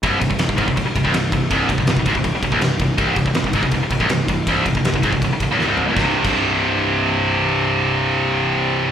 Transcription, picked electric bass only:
0.03 0.20 C1 medium
0.21 0.30 C1 medium
0.30 0.39 C1 medium
0.41 0.48 C1 medium
0.49 0.58 C1 medium
0.58 0.67 G#1 loud
0.68 0.76 C1 medium
0.77 0.85 C1 medium
0.86 muted picked electric bass stroke soft
0.95 1.04 C1 medium
1.05 1.12 C1 loud
1.13 1.30 C1 medium
1.32 1.49 C1 medium
1.51 1.68 C1 medium
1.69 1.77 C1 medium
1.78 1.86 C1 medium
1.87 1.96 C1 medium
1.96 2.05 C1 medium
2.06 2.15 G#1 medium
2.15 2.24 C1 medium
2.24 2.33 C1 medium
2.33 muted picked electric bass stroke soft
2.42 2.51 C1 medium
2.51 2.60 C1 medium
2.62 2.79 C1 medium
2.80 2.97 C1 medium
2.98 3.15 C1 medium
3.16 3.25 C1 medium
3.25 3.34 C1 medium
3.34 3.43 C1 medium
3.44 3.53 C1 medium
3.53 3.62 G#1 loud
3.63 3.71 C1 medium
3.72 3.80 C1 medium
3.80 muted picked electric bass stroke soft
3.90 3.99 C1 medium
4.00 4.08 C1 loud
4.09 4.27 C1 medium
4.29 4.46 C1 medium
4.47 4.64 C1 medium
4.66 4.74 C1 medium
4.75 4.84 C1 medium
4.84 4.93 C1 medium
4.94 5.02 C1 medium
5.03 5.12 G#1 medium
5.12 5.21 C1 medium
5.22 5.30 C1 medium
5.31 muted picked electric bass stroke soft
5.40 5.49 C1 medium
5.49 5.58 C#1 loud
5.59 5.67 D#1 loud
5.68 5.86 C1 loud
5.87 5.96 C#1 loud
5.96 6.07 C1 loud
6.24 8.91 C1 medium

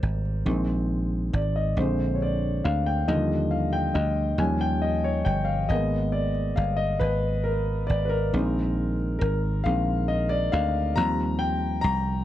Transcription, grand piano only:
0.00 0.47 C5 medium
0.00 0.48 D5 medium
0.45 1.73 D#3 soft
0.45 1.73 G#3 soft
0.45 1.73 C4 medium
1.33 1.38 D5 medium
1.56 1.76 D#5 medium
1.77 3.04 D3 soft
1.77 3.05 G#3 soft
1.77 3.05 C4 medium
1.77 2.15 C5 medium
2.15 2.21 C#5 medium
2.22 2.66 D5 medium
2.64 2.87 F5 medium
2.86 3.09 G5 medium
3.08 3.67 D3 medium
3.08 3.66 F3 medium
3.08 3.67 G3 soft
3.08 3.53 D#5 medium
3.51 3.72 F5 medium
3.73 3.96 G5 medium
3.94 4.36 D#5 medium
4.39 5.67 F3 soft
4.39 5.67 G3 soft
4.39 5.68 C#4 medium
4.39 4.62 G#5 medium
4.61 4.84 G5 medium
4.82 5.05 D#5 medium
5.04 5.27 C#5 medium
5.25 5.48 G5 medium
5.45 5.69 F5 medium
5.69 6.29 G#3 medium
5.69 6.29 A#3 soft
5.69 6.29 B3 medium
5.69 6.15 D#5 medium
6.12 6.59 D5 medium
6.56 6.80 F5 medium
6.77 6.82 D#5 medium
7.00 7.46 B4 medium
7.44 7.90 A#4 medium
7.87 8.04 D5 medium
8.05 8.12 B4 medium
8.09 8.94 A#4 medium
8.33 9.61 D#3 medium
8.33 9.61 G#3 soft
8.33 9.61 C4 medium
9.19 9.65 A#4 medium
9.64 10.05 D#3 soft
9.64 10.05 G#3 soft
9.64 10.05 C4 soft
9.64 10.10 F5 medium
10.08 10.31 D#5 medium
10.29 10.53 D5 loud
10.52 10.98 F5 loud
10.96 11.55 F3 medium
10.96 11.55 G3 soft
10.96 11.55 C4 medium
10.96 11.41 A#5 loud
11.39 11.80 G5 medium
11.81 11.92 A#5 loud

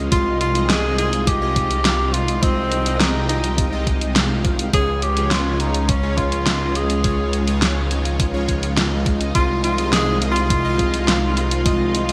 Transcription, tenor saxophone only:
0.12 0.39 F4 loud
0.41 0.71 F4 loud
0.69 0.98 G#4 loud
0.98 1.28 G#4 loud
1.27 2.15 G4 loud
2.13 2.44 F4 loud
2.42 3.01 C4 loud
3.00 3.28 D#4 medium
3.29 3.83 D#4 medium
4.74 5.04 G#4 loud
5.03 5.33 G4 loud
5.32 5.62 F4 loud
5.60 5.91 D#4 loud
5.89 6.19 C#4 loud
6.18 6.77 F4 loud
6.76 7.62 G#4 loud
9.35 9.62 F4 loud
9.64 9.91 F4 loud
9.93 10.19 G#4 loud
10.31 11.33 F4 loud
11.37 12.12 F4 medium

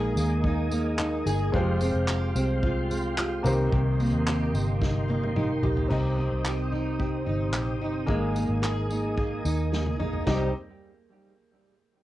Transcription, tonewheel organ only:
0.00 1.52 A#4 medium
0.00 1.50 D#5 medium
0.00 1.52 G#5 medium
0.00 1.50 D#6 medium
1.53 3.43 G#3 medium
1.53 3.43 F5 medium
1.53 5.86 G5 medium
1.53 3.43 C6 medium
3.45 5.88 A#4 medium
3.45 5.88 D#5 medium
3.45 5.88 C6 medium
5.90 8.06 C5 medium
5.90 8.06 D#5 medium
5.90 8.06 G5 medium
5.90 10.23 D#6 medium
8.08 10.25 A#4 medium
8.08 10.25 D#5 medium
8.08 10.24 G#5 medium
10.26 10.52 C4 medium
10.26 10.52 D#4 medium
10.26 10.52 G4 medium
10.26 10.52 D#5 medium
10.26 10.52 G5 medium

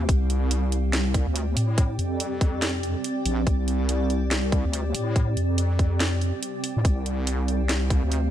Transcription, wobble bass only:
0.09 1.26 C2 loud
1.27 1.56 D2 medium
1.57 1.98 A2 medium
1.99 2.95 F2 medium
3.26 3.45 A#1 medium
4.65 4.94 D2 loud
4.95 5.36 A2 medium
5.37 6.33 F2 medium
6.77 6.84 A2 medium
6.85 8.02 C2 loud
8.03 8.31 D2 medium

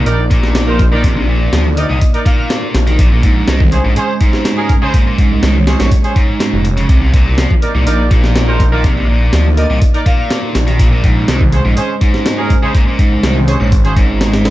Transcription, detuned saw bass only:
0.06 1.49 A#1 medium
1.53 1.85 D2 loud
1.90 1.99 C2 loud
2.75 3.44 A#1 medium
3.48 3.80 C2 loud
3.85 3.94 A#1 loud
5.31 5.41 C2 soft
5.43 5.76 C2 loud
5.80 5.89 A#1 loud
6.53 6.85 F1 loud
6.89 7.46 C2 loud
7.75 7.84 C2 loud
7.87 9.29 A#1 medium
9.33 9.66 D2 loud
9.70 9.79 C2 loud
10.55 11.24 A#1 medium
11.28 11.61 C2 loud
11.65 11.74 A#1 loud
13.12 13.21 C2 soft
13.23 13.56 C2 loud
13.60 13.74 A#1 loud
13.72 14.50 G#1 medium

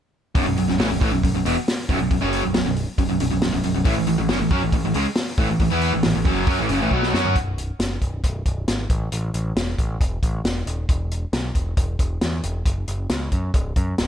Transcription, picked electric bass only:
0.36 0.46 B0 medium
0.46 0.57 B0 medium
0.57 0.67 B0 medium
0.69 0.79 B0 medium
0.80 0.90 A1 medium
0.90 1.00 B0 medium
1.01 1.11 A1 medium
1.12 1.22 B0 medium
1.24 1.33 B0 medium
1.34 1.44 B0 medium
1.46 1.55 E1 medium
1.89 1.99 B0 medium
2.00 2.10 B0 medium
2.11 2.21 B0 medium
2.23 2.42 F#1 loud
2.45 2.54 B0 medium
2.55 2.65 B0 medium
2.66 2.86 B0 medium
2.98 3.08 B0 medium
3.10 3.19 B0 medium
3.21 3.30 B0 medium
3.32 3.42 B0 medium
3.43 3.52 B0 medium
3.53 3.63 B0 medium
3.63 3.74 B0 medium
3.75 3.85 B0 medium
3.85 3.96 A1 medium
3.97 4.07 A1 medium
4.08 4.18 A1 medium
4.19 4.29 A1 medium
4.29 4.39 F#1 medium
4.40 4.50 A1 medium
4.51 4.61 F#2 medium
4.63 4.72 A1 medium
4.72 4.83 A1 medium
4.84 4.94 A1 medium
4.95 5.05 C#2 medium
5.38 5.48 A1 medium
5.50 5.59 A1 medium
5.60 5.70 A1 medium
5.72 5.92 E2 medium
5.94 6.04 A1 medium
6.05 6.15 A1 medium
6.16 6.25 A1 medium
6.25 6.46 F#1 medium
6.47 6.58 F#2 medium
6.59 6.69 A1 medium
6.70 6.80 F#1 medium
6.82 6.90 A1 medium
6.91 7.12 B1 medium
7.14 7.34 F#2 medium
7.36 7.71 B0 medium
7.79 7.97 F#1 medium
8.02 8.19 B0 medium
8.24 8.41 B0 medium
8.46 8.63 B0 medium
8.68 8.85 G#1 medium
8.90 9.07 A1 medium
9.12 9.30 A1 medium
9.34 9.51 A1 medium
9.56 9.73 E1 medium
9.79 9.96 A1 medium
10.00 10.18 E1 medium
10.23 10.40 A1 medium
10.44 10.62 E1 medium
10.66 10.84 D#1 medium
10.89 11.24 E1 medium
11.33 11.50 B1 medium
11.55 11.73 E1 medium
11.77 11.95 E1 medium
11.99 12.17 E1 medium
12.23 12.40 E2 medium
12.44 12.61 E1 medium
12.66 12.83 F#1 medium
12.88 13.05 F#1 medium
13.10 13.28 C#2 medium
13.32 13.50 F#2 medium
13.54 13.72 C#1 medium
13.77 13.94 F#2 medium
13.99 14.07 C#1 medium

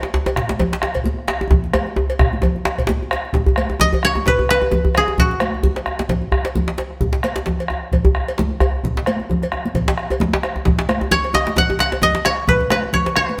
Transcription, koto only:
3.81 3.87 D#5 medium
4.05 5.70 C#5 medium
4.28 4.50 B4 medium
4.50 6.28 B4 loud
4.97 6.94 G#4 medium
5.20 7.31 F#4 medium
11.12 12.25 C#5 medium
11.35 12.03 D#5 medium
11.58 11.80 F#5 loud
11.80 13.20 F#5 medium
12.03 13.40 D#5 medium
12.25 12.93 C#5 medium
12.49 12.71 B4 medium
12.72 13.16 B4 medium
12.94 13.40 C#5 medium
13.16 13.40 B4 medium

